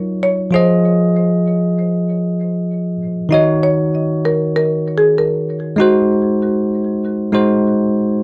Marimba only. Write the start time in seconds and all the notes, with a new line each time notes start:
Already playing: A#4
0.23 C#5
0.54 C5
3.32 D#5
3.63 C#5
4.25 A#4
4.56 A#4
4.98 G#4
5.18 A#4
5.80 F#4